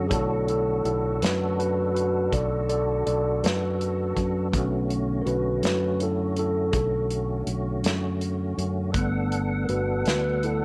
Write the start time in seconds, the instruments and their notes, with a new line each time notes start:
Already playing: fingered electric bass F#2
0.08 fingered electric bass B1, tine electric piano D3 A3 E4 G#4 C#5, tonewheel organ D4 F#4 A4, kick, closed hi-hat
0.12 tine electric piano A4
0.48 tine electric piano E4 A4, closed hi-hat
0.85 fingered electric bass B1, tine electric piano E4 A4, closed hi-hat
1.22 fingered electric bass F#2, tine electric piano F#4 B4, snare, closed hi-hat
1.59 tine electric piano F#4 B4, closed hi-hat
1.95 tine electric piano F#4 B4, closed hi-hat
2.32 fingered electric bass B1, tine electric piano A4 D5, kick, closed hi-hat
2.69 tine electric piano A4 D5, closed hi-hat
3.06 fingered electric bass B1, tine electric piano A4 D5, closed hi-hat
3.43 fingered electric bass F#2, tine electric piano F#4 B4, snare, closed hi-hat
3.81 closed hi-hat
4.17 fingered electric bass F#2, kick, closed hi-hat
4.52 fingered electric bass B1, tine electric piano D3 A3 C#4, tonewheel organ D3 A3 C#4 F#4, kick, closed hi-hat
4.90 closed hi-hat
5.22 tine electric piano A#4
5.26 fingered electric bass B1, tine electric piano F#4 B4, closed hi-hat
5.63 fingered electric bass F#2, tine electric piano F#4 B4, snare, closed hi-hat
6.00 tine electric piano E4 A4, closed hi-hat
6.37 tine electric piano E4 A4, closed hi-hat
6.72 fingered electric bass B1, tine electric piano G#4, kick, closed hi-hat
6.77 tine electric piano A4
7.11 closed hi-hat
7.47 fingered electric bass B1, closed hi-hat
7.83 fingered electric bass F#2, snare, closed hi-hat
8.21 closed hi-hat
8.58 fingered electric bass F#2, closed hi-hat
8.92 fingered electric bass G1, tine electric piano G3 A3, tonewheel organ B3 D4 A4 F#5, kick, closed hi-hat
8.97 tine electric piano B3
9.32 closed hi-hat
9.65 tine electric piano A#4, closed hi-hat
9.69 fingered electric bass G1, tine electric piano F#4 B4
10.06 fingered electric bass D2, tine electric piano F#4 B4, snare, closed hi-hat
10.43 tine electric piano E4 A4, closed hi-hat